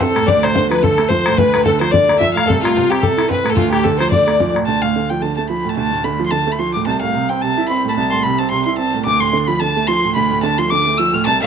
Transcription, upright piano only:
Already playing: C2
0.00 C4
0.15 A2
0.28 D2
0.43 A2
0.55 D3
0.70 F3
0.83 D3
0.99 A3
1.11 F3
1.27 A2
1.39 D2
1.54 A2
1.66 D3
1.81 F3
1.93 D3
2.09 A3
2.20 F3
2.36 A2
2.49 C2
2.63 A2
2.75 C3
2.91 C4
3.02 C3
3.17 E4
3.29 C4
3.44 A2
3.56 D2
3.71 A2
3.85 D3
4.00 F3
4.12 D3
4.27 A3
4.40 F3
4.55 A2
4.67 D2
4.83 A2
4.96 D3
5.11 F3
5.22 D3
5.38 A3
5.50 F3
5.65 A2
5.77 D2
5.92 A2
6.04 D3
6.19 F3
6.32 D3
6.47 A3
6.59 F3
6.76 A2
6.87 C2
7.02 A2
7.14 C3
7.30 C4
7.43 C3
7.57 E4
7.70 C4
7.84 A2
7.97 C2
8.12 A2
8.25 C3
8.40 C4
8.51 C3
8.66 E4
8.78 C4
8.94 A2
9.06 D2
9.20 A2
9.33 D3
9.48 F3
9.62 D3
9.76 A3
9.88 F3
10.04 A2
10.16 D2
10.31 A2
10.43 D3
10.59 F3
10.71 D3
10.86 A3
10.99 F3
11.13 A2
11.26 C2
11.42 A2

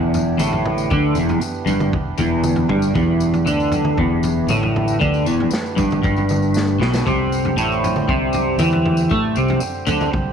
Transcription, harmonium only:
Already playing: E3 B3 D4 G4 B4
7.04 D3 G3 C4 G4 C5

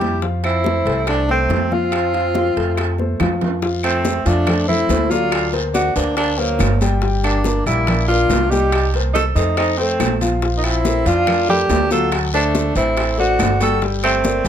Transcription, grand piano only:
Already playing: G3 G4 G5
0.23 F3 F4 F5
0.65 A3 A4 C5
0.86 A3 A4 C5
1.29 A3 A4 C5
1.71 F3 F4 F5
2.14 F3 F4 F5
2.57 A3 A4 C5
2.99 A3 A4 C5
3.20 F3 F4 F5
3.62 F3 F4 F5
4.05 A3 A4 C5
4.25 F3 F4 F5
4.46 A3 A4 C5
4.68 A3 A4 C5
4.89 A3 A4 C5
5.10 F#3 A4 F5
5.53 A#3 A#4 C5
5.96 A#3 A#4 C5
6.39 A#3 A#4 C5
6.82 G3 G4 G5
7.03 G3 G4 G5
7.46 A#3 A#4 D5
7.66 G3 G4 G5
7.88 A#3 A#4 D5
8.10 A#3 A#4 D5
8.31 A#3 A#4 D5
8.52 G3 G4 G5
8.95 A#3 A#4 C5
9.37 A3 A4 C5
9.79 A3 A4 C5
10.21 F3 F4 F5
10.42 F3 F4 F5
10.85 A3 A4 A#4
11.05 F3 F4 F5
11.27 A3 A4 A#4
11.49 A3 A4 A#4
11.70 A3 A4 A#4
11.91 F#3 F#4 F#5
12.34 A3 A4 C5
12.76 A3 A4 C5
13.18 A3 A4 C5
13.60 G3 G4 G5
13.82 G3 G4 G5
14.24 A#3 A#4 D5
14.45 G3

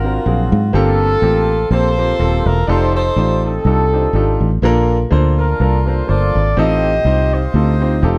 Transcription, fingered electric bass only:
Already playing: G#1
0.26 A#1
0.52 G#2
0.74 G1
1.22 A1
1.70 A#1
2.19 D#1
2.46 E1
2.68 F1
3.16 A1
3.65 C2
4.13 G#1
4.40 A1
4.62 A#1
5.11 D2
5.60 C2
6.09 G1
6.35 G#1
6.57 A1
7.05 C2
7.54 D2
8.03 F1

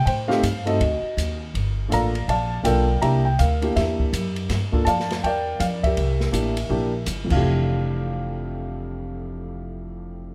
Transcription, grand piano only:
0.06 C5 G5
0.28 A3 C4 D#4 G4 F5
0.65 A3 C4 D#4 F#4 A4 D#5
1.88 A#3 D4 F4 A4 D5 F5
1.93 A#5
2.29 D5 F5 A5
2.63 A#3 D4 F4 A4 A#4 D5 G5
3.02 A#3 D4 E4 G4 E5 G5 A#5
3.25 G5
3.39 A#4 F5
3.62 A#3 D4 E4 G4
3.76 G4 A#4 E5
4.72 A#3 D4 F4 A4
4.85 D5 F5 A5
5.24 A#4 D5 G5
5.60 F5
5.83 G4 A#4 E5
6.31 A#3 D4 E4 G4
6.69 A#3 D4 E4 G4
7.24 F2 E3
7.29 A3 D4 F5
7.36 G4

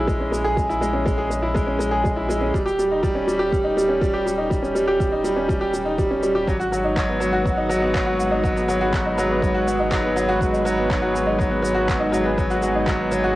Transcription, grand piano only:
Already playing: G#3 C#4 E4 G#4
0.07 G#3
0.20 C#4
0.32 G#3
0.44 G#4
0.57 G#3
0.69 E4
0.81 G#3
0.93 C#4
1.06 G#3
1.18 G#4
1.30 G#3
1.42 E4
1.55 G#3
1.67 C#4
1.79 G#3
1.91 G#4
2.04 G#3
2.17 E4
2.29 G#3
2.41 C#4
2.54 G3
2.66 G4
2.79 G3
2.91 D#4
3.03 G3
3.15 C#4
3.27 G3
3.39 G4
3.52 G3
3.64 D#4
3.77 G3
3.88 C#4
4.01 G3
4.13 G4
4.26 G3
4.38 D#4
4.50 G3
4.62 C#4
4.75 G3
4.87 G4
4.99 G3
5.12 D#4
5.24 G3
5.36 C#4
5.48 G3
5.61 G4
5.74 G3
5.85 D#4
5.98 G3
6.11 C#4
6.23 G3
6.35 G4
6.48 F#3
6.60 F#4
6.72 F#3
6.84 D#4
6.96 F#3
7.08 B3
7.20 F#3
7.33 F#4
7.45 F#3
7.57 D#4
7.69 F#3
7.82 B3
7.94 F#3
8.06 F#4
8.19 F#3
8.31 D#4
8.44 F#3
8.56 B3
8.68 F#3
8.81 F#4
8.94 F#3
9.06 D#4
9.18 F#3
9.31 B3
9.42 F#3
9.55 F#4
9.67 F#3
9.80 D#4
9.91 F#3
10.04 B3
10.16 F#3
10.29 F#4
10.40 F#3
10.53 D#4
10.65 F#3
10.78 B3
10.90 F#3
11.02 F#4
11.15 F#3
11.27 D#4
11.39 F#3
11.51 B3
11.62 F#3
11.75 F#4
11.88 F#3
12.00 D#4
12.12 F#3
12.25 B3
12.38 F#3
12.50 F#4
12.63 F#3
12.75 D#4
12.87 F#3
12.99 B3
13.12 F#3
13.24 F#4

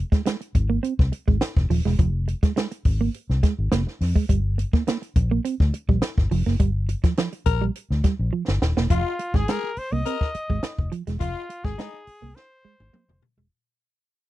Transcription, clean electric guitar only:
0.12 G#3
0.26 G#3
0.41 muted clean electric guitar stroke
0.70 A#3
0.83 C4
1.12 muted clean electric guitar stroke
1.28 G#3
1.42 muted clean electric guitar stroke
1.70 F3
1.85 G#3
1.99 F3
2.28 muted clean electric guitar stroke
2.43 G#3
2.56 G#3
2.71 muted clean electric guitar stroke
3.01 A#3
3.43 G#3
3.72 A#3
3.87 muted clean electric guitar stroke
4.16 G#3
4.29 G3
4.58 muted clean electric guitar stroke
4.73 A#3
4.87 A#3
5.02 muted clean electric guitar stroke
5.31 A#3
5.45 C4
5.74 muted clean electric guitar stroke
5.89 G3
6.02 muted clean electric guitar stroke
6.31 F3
6.46 A#3
6.60 G3
6.89 muted clean electric guitar stroke
7.04 F3
7.18 F3
7.33 muted clean electric guitar stroke
7.61 G3
8.04 G3
8.33 F3
8.48 muted clean electric guitar stroke
8.77 A#3
8.90 F3
9.19 muted clean electric guitar stroke
9.35 G#3
9.48 G#3
9.64 muted clean electric guitar stroke
9.93 A#3
10.06 C4
10.35 muted clean electric guitar stroke
10.50 G#3
10.63 muted clean electric guitar stroke
10.92 F3
11.07 G#3
11.20 F3
11.49 muted clean electric guitar stroke
11.65 G#3
11.78 G#3
11.94 muted clean electric guitar stroke
12.22 A#3
12.65 G#3
12.93 A#3
13.09 muted clean electric guitar stroke
13.38 G#3

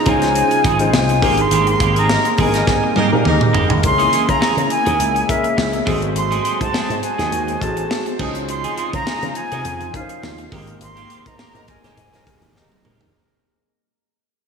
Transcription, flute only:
Already playing: A#5
0.09 G#5
0.96 G#5
1.41 C6
1.70 C6
1.98 A#5
2.41 G#5
3.86 C6
4.30 A#5
4.71 G#5
5.30 E5
6.17 C6
6.62 A5
7.04 G#5
7.62 A5
8.49 C6
8.95 A#5
9.37 G#5
9.96 F5
10.83 C6
11.27 A#5
11.70 G#5

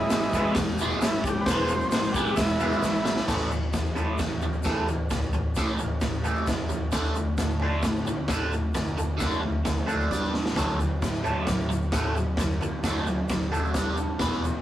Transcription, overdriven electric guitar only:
0.13 E3 G#3
0.35 E3 G#3 B3
0.57 E3 G#3
0.81 E3 G#3 B3
1.05 E3 G#3
1.27 E3 G#3
1.50 E3 G#3 B3
1.72 E3 G#3
1.95 E3 G#3
2.16 E3 G#3 B3
2.39 E3 G#3
2.60 E3 G#3 B3
2.82 E3 G#3
3.05 E3 G#3
3.28 A2 E3 A3
3.50 A2 E3
3.73 A2 E3
3.95 A2 E3 A3
4.20 A2 E3
4.43 A2 E3
4.64 A2 E3 A3
4.88 A2 E3
5.11 A2 E3
5.33 A2 E3
5.57 A2 E3 A3
5.80 A2 E3
6.03 A2 E3
6.24 A2 E3 A3
6.49 A2 E3
6.70 A2 E3
6.92 D3 A3 D4
7.16 D3 A3
7.41 D3 A3
7.62 D3 A3 D4
7.85 D3 A3
8.07 D3 A3
8.29 D3 A3 D4
8.53 D3 A3
8.75 D3 A3
8.97 D3 A3
9.18 D3 A3 D4
9.42 D3 A3
9.65 D3 A3
9.87 D3 A3 D4
10.11 G3 D4 G4
10.34 G3 D4
10.57 D3 F#3 A3
10.79 D3 F#3
11.02 D3 F#3
11.24 D3 F#3 A3
11.48 D3 F#3
11.69 D3 F#3
11.93 D3 F#3 A3
12.15 D3 F#3
12.39 D3 F#3
12.61 D3 F#3
12.84 D3 F#3 A3
13.08 D3 F#3
13.31 D3 F#3
13.52 D3 F#3 A3
13.76 G3 D4 G4
13.97 G3 D4
14.19 E3 B3 E4
14.44 E3 B3

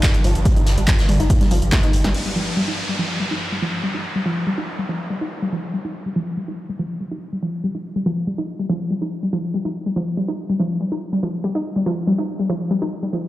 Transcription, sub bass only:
0.14 G1
0.24 G1
0.35 G1
0.57 G1
0.67 G1
0.78 G1
0.99 G1
1.09 G1
1.20 G1
1.41 G1
1.51 G1
1.62 G1
1.83 G1
1.93 G1
2.04 G1

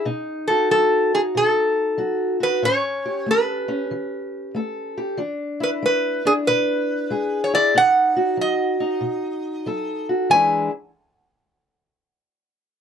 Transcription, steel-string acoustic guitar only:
0.05 B2 D#4
0.50 F#4
0.71 F#3
1.14 D#4
1.35 B2
1.98 F#3 F#4
2.40 F#4
2.62 A2 C#4
3.06 G4
3.26 A3
3.68 C#4
3.91 E3
4.55 A3 A4
4.98 G4
5.17 E3 D4
5.60 E4
5.83 G#3
6.25 D4
6.47 B2
7.10 G#3 G#4
7.53 E4
7.74 B2 D#4
8.16 F#4
8.37 F#3
8.80 D#4
9.01 B2
9.66 F#3 A4
10.09 F#4
10.30 E3 G#3 D4 E4 G#4

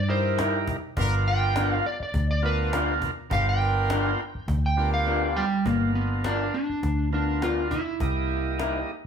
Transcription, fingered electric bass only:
Already playing: G2
0.97 G1
2.00 muted fingered electric bass stroke
2.14 D2
3.31 G1
4.35 muted fingered electric bass stroke
4.48 D2
5.66 G1
6.69 muted fingered electric bass stroke
6.83 D2
8.00 C2

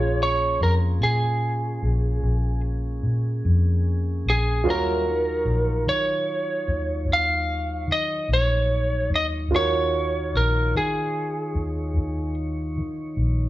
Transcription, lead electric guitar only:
Already playing: C#5
0.23 C#5
0.63 A#4
1.03 G#4
4.30 G#4
4.70 A#4
5.89 C#5
7.13 F5
7.92 D#5
8.33 C#5
9.16 D#5
9.56 C#5
10.37 A#4
10.77 G#4

